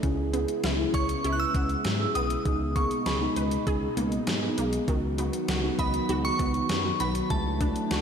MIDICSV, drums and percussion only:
0, 0, Header, 1, 2, 480
1, 0, Start_track
1, 0, Key_signature, 4, "minor"
1, 0, Tempo, 606061
1, 25, Time_signature, 4, 2, 24, 8
1, 6347, End_track
2, 0, Start_track
2, 0, Title_t, "Drums"
2, 25, Note_on_c, 9, 36, 101
2, 25, Note_on_c, 9, 42, 67
2, 104, Note_off_c, 9, 36, 0
2, 104, Note_off_c, 9, 42, 0
2, 266, Note_on_c, 9, 42, 68
2, 345, Note_off_c, 9, 42, 0
2, 383, Note_on_c, 9, 42, 54
2, 463, Note_off_c, 9, 42, 0
2, 504, Note_on_c, 9, 42, 60
2, 505, Note_on_c, 9, 38, 105
2, 583, Note_off_c, 9, 42, 0
2, 584, Note_off_c, 9, 38, 0
2, 743, Note_on_c, 9, 36, 87
2, 744, Note_on_c, 9, 42, 78
2, 823, Note_off_c, 9, 36, 0
2, 823, Note_off_c, 9, 42, 0
2, 864, Note_on_c, 9, 42, 58
2, 943, Note_off_c, 9, 42, 0
2, 986, Note_on_c, 9, 42, 74
2, 1065, Note_off_c, 9, 42, 0
2, 1224, Note_on_c, 9, 36, 99
2, 1225, Note_on_c, 9, 42, 73
2, 1303, Note_off_c, 9, 36, 0
2, 1304, Note_off_c, 9, 42, 0
2, 1342, Note_on_c, 9, 42, 42
2, 1421, Note_off_c, 9, 42, 0
2, 1462, Note_on_c, 9, 42, 68
2, 1464, Note_on_c, 9, 38, 103
2, 1541, Note_off_c, 9, 42, 0
2, 1543, Note_off_c, 9, 38, 0
2, 1705, Note_on_c, 9, 42, 76
2, 1785, Note_off_c, 9, 42, 0
2, 1824, Note_on_c, 9, 42, 54
2, 1903, Note_off_c, 9, 42, 0
2, 1944, Note_on_c, 9, 42, 70
2, 1945, Note_on_c, 9, 36, 106
2, 2024, Note_off_c, 9, 36, 0
2, 2024, Note_off_c, 9, 42, 0
2, 2184, Note_on_c, 9, 36, 91
2, 2185, Note_on_c, 9, 42, 69
2, 2263, Note_off_c, 9, 36, 0
2, 2264, Note_off_c, 9, 42, 0
2, 2304, Note_on_c, 9, 42, 52
2, 2383, Note_off_c, 9, 42, 0
2, 2424, Note_on_c, 9, 42, 61
2, 2425, Note_on_c, 9, 38, 101
2, 2503, Note_off_c, 9, 42, 0
2, 2504, Note_off_c, 9, 38, 0
2, 2664, Note_on_c, 9, 42, 77
2, 2744, Note_off_c, 9, 42, 0
2, 2783, Note_on_c, 9, 42, 55
2, 2862, Note_off_c, 9, 42, 0
2, 2905, Note_on_c, 9, 36, 89
2, 2905, Note_on_c, 9, 42, 73
2, 2984, Note_off_c, 9, 36, 0
2, 2985, Note_off_c, 9, 42, 0
2, 3145, Note_on_c, 9, 42, 77
2, 3224, Note_off_c, 9, 42, 0
2, 3262, Note_on_c, 9, 42, 42
2, 3342, Note_off_c, 9, 42, 0
2, 3382, Note_on_c, 9, 42, 69
2, 3384, Note_on_c, 9, 38, 106
2, 3461, Note_off_c, 9, 42, 0
2, 3464, Note_off_c, 9, 38, 0
2, 3626, Note_on_c, 9, 42, 77
2, 3705, Note_off_c, 9, 42, 0
2, 3744, Note_on_c, 9, 42, 55
2, 3823, Note_off_c, 9, 42, 0
2, 3865, Note_on_c, 9, 36, 106
2, 3865, Note_on_c, 9, 42, 70
2, 3944, Note_off_c, 9, 36, 0
2, 3944, Note_off_c, 9, 42, 0
2, 4105, Note_on_c, 9, 42, 69
2, 4185, Note_off_c, 9, 42, 0
2, 4224, Note_on_c, 9, 42, 53
2, 4303, Note_off_c, 9, 42, 0
2, 4343, Note_on_c, 9, 42, 64
2, 4345, Note_on_c, 9, 38, 105
2, 4423, Note_off_c, 9, 42, 0
2, 4424, Note_off_c, 9, 38, 0
2, 4583, Note_on_c, 9, 36, 88
2, 4584, Note_on_c, 9, 42, 76
2, 4662, Note_off_c, 9, 36, 0
2, 4663, Note_off_c, 9, 42, 0
2, 4703, Note_on_c, 9, 42, 57
2, 4782, Note_off_c, 9, 42, 0
2, 4824, Note_on_c, 9, 42, 72
2, 4904, Note_off_c, 9, 42, 0
2, 5063, Note_on_c, 9, 36, 99
2, 5064, Note_on_c, 9, 42, 75
2, 5143, Note_off_c, 9, 36, 0
2, 5143, Note_off_c, 9, 42, 0
2, 5181, Note_on_c, 9, 42, 41
2, 5260, Note_off_c, 9, 42, 0
2, 5301, Note_on_c, 9, 42, 70
2, 5303, Note_on_c, 9, 38, 107
2, 5380, Note_off_c, 9, 42, 0
2, 5382, Note_off_c, 9, 38, 0
2, 5544, Note_on_c, 9, 42, 78
2, 5623, Note_off_c, 9, 42, 0
2, 5663, Note_on_c, 9, 42, 53
2, 5742, Note_off_c, 9, 42, 0
2, 5784, Note_on_c, 9, 36, 105
2, 5784, Note_on_c, 9, 42, 71
2, 5863, Note_off_c, 9, 36, 0
2, 5863, Note_off_c, 9, 42, 0
2, 6024, Note_on_c, 9, 36, 87
2, 6024, Note_on_c, 9, 42, 69
2, 6103, Note_off_c, 9, 36, 0
2, 6103, Note_off_c, 9, 42, 0
2, 6143, Note_on_c, 9, 42, 52
2, 6222, Note_off_c, 9, 42, 0
2, 6263, Note_on_c, 9, 42, 61
2, 6264, Note_on_c, 9, 38, 105
2, 6342, Note_off_c, 9, 42, 0
2, 6344, Note_off_c, 9, 38, 0
2, 6347, End_track
0, 0, End_of_file